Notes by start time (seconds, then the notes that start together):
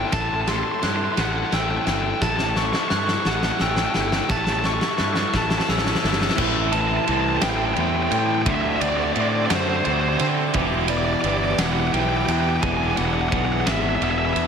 Already playing: A3 C4 E4 A4 C6 E6
0.04 E4 A4
0.08 G5
0.12 A1 A3 E4 A4 E5 A5 A6, kick, snare, ride
0.20 E4 A4 A5
0.27 E4 A4 A5
0.34 E4 A4 A5
0.41 E4 A4 A5
0.47 E4 A4 C6, snare, ride
0.53 A4 C6
0.59 E4 A4
0.63 E4 C6
0.68 A4 C6
0.74 E4 A4
0.80 G2 E4 A4 C6 F#6, snare, ride
0.88 E4 A4 C6
0.96 E4 A4 C6
1.04 E4 A4 C6
1.12 E4 A4 C6
1.17 A1 A3 E4 A4 F#5, snare, ride
1.25 E4 F#5
1.30 A4 F#5
1.36 E4 A4 F#5
1.43 E4 A4 F#5
1.51 A1 C4 E4 A4 G5 E6, snare, ride
1.58 E4 A4 G5
1.66 E4 A4
1.71 E4 G5
1.76 A4 G5
1.81 E4 A4
1.86 G1 A3 E4 G5, snare, ride
1.91 A4 G5
1.97 E4 A4
2.02 E4 A4 G5
2.10 E4 A4 G5
2.21 A1 A3 E4 A4 E5 A5 C#6 A6, kick, snare
2.29 E4 A4 A5
2.36 E4 A4 A5, snare
2.44 E4 A4 A5
2.50 E4 A5
2.54 A4 C#6, snare
2.59 E4 A4
2.65 E4 A4 C#6
2.73 E4 A4 C#6, snare
2.80 E4 C#6
2.84 A4
2.88 G2 E4 A4 C#6 F#6, snare
2.96 E4 A4 C#6
3.05 E4 A4 C#6, snare
3.13 E4 A4 C#6
3.20 E4 A4 C#6
3.25 A1 A3 E4 F#5, snare
3.30 A4
3.35 E4 A4 F#5
3.43 E4 A4 F#5, snare
3.51 E4 A4 F#5
3.59 A1 C#4 E4 A4 G5 E6, snare
3.66 E4 A4 G5
3.73 E4 A4, snare
3.78 E4 G5
3.83 A4 G5
3.89 E4 A4
3.94 G1 A3 E4 G5, snare
3.98 A4 G5
4.05 E4 A4 G5
4.12 E4 A4, snare
4.17 E4 G5
4.21 A4 G5
4.29 A1 A3 E4 A4 A5 A6, kick, snare
4.36 E4 A4 A5
4.44 E4 A4 A5, snare
4.53 E4 A4 A5
4.59 E4 A4 A5
4.64 A4 C#6, snare
4.69 E4
4.74 E4 A4 C#6
4.81 E4 A4 C#6, snare
4.89 E4 A4 C#6
4.98 G2 E4 A4 C#6 F#6, snare
5.04 E4 A4 C#6
5.13 E4 A4 C#6, snare
5.20 E4 A4 C#6
5.28 E4 A4 C#6
5.33 A1 A3 E4 A4 A5, kick, snare
5.42 E4 A4 A5
5.50 E4 A5, snare
5.54 A4
5.58 E4 A4 A5, snare
5.68 A1 C#4 E4 A4 E6, snare
5.75 E4 A4, snare
5.83 E4 A4, snare
5.91 E4 A4, snare
5.98 E4 A4
6.04 G1 A3 E4 A4, snare
6.13 E4 A4, snare
6.21 E4 A4, snare
6.29 E4 A4, snare
6.36 A1 A2 E3 A3 C4 E4 A4 G5 C6, kick, crash
6.72 A2 E3 A3 C4 E4 A5, ride
6.81 A5
6.88 A5
6.97 A5
7.04 A2 E3 A3 A5, ride
7.08 C2 C4 E4 A5
7.21 A5
7.29 A5
7.37 A5
7.41 A1 A2 E3 G3 A3 C4 E4 G5, snare, ride
7.50 G5
7.57 G5
7.65 G5
7.74 E2 A2 E3 A3 G5, ride
7.78 C4 E4 G5
7.88 G5
7.96 G5
8.03 G5
8.11 A2 C4 G5, ride
8.19 G5
8.26 G5
8.35 G5
8.42 D3 G5
8.46 D2 D3 A3 C4 D4 F#4 C5 E5 F#5 D6, kick, ride
8.55 E5
8.62 E5
8.69 E5
8.76 E5
8.80 D2 D3 A3 C4 D4 F#4 D5, ride
8.89 D5
8.97 D5
9.04 D5
9.13 A2 D3 A3 C4 D4 D5, ride
9.17 F#4 D5
9.29 D5
9.36 D5
9.46 D3 D5
9.50 F#2 D3 A3 C4 D4 F#4 C5, snare, ride
9.61 C5
9.69 C5
9.77 C5
9.84 D2 D3 A3 C4 D4 F#4 C5, ride
9.93 C5
10.01 C5
10.09 C5
10.18 D3 C4 C5, ride
10.54 E1 E2 B2 E3 B3 E4 G4 E5, kick, ride
10.88 E2 B2 E3 B3 E4 G4 D5, ride
10.98 D5
11.05 D5
11.13 D5
11.21 G1 E2 B2 E3 B3 E4 G4 D5, ride
11.28 D5
11.37 D5
11.45 D5
11.53 D5
11.58 E1 E2 B2 E3 B3 E4 G4 F#5, snare, ride
11.66 F#5
11.73 F#5
11.80 F#5
11.87 F#5
11.93 B1 E2 B2 E3 B3 E4 G4 G5, ride
12.00 G5
12.09 G5
12.17 G5
12.26 E2 D4 G5, ride
12.32 G5
12.41 G5
12.49 G5
12.57 G5
12.62 E1 E2 B2 E3 B3 D4 G#4 G#5, kick, ride
12.69 G#5
12.77 G#5
12.83 G#5
12.91 G#5
12.97 E1 E2 B2 E3 B3 D4 G#4 F#5, ride
13.06 F#5
13.14 F#5
13.21 F#5
13.29 B1 E2 E3 B3 D4 F#5, kick, ride
13.33 B2 E3 G#4 F#5
13.45 F#5
13.52 F#5
13.61 F#5
13.66 G#1 E2 B2 E3 B3 D4 G#4 E5, snare, ride
13.72 E5
13.81 E5
13.89 E5
13.96 E5
14.01 E1 E2 B2 E3 B3 D4 G#4 E5, ride
14.11 E5
14.19 E5
14.25 E5
14.34 E2 D4 E5, ride